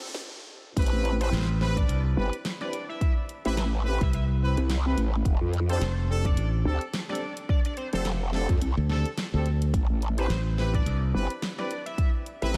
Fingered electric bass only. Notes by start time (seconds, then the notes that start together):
1.32 A1
1.89 C2
4.01 C2
5.81 F1
6.37 A1
8.77 D2
9.34 D2
10.30 A1
10.86 C2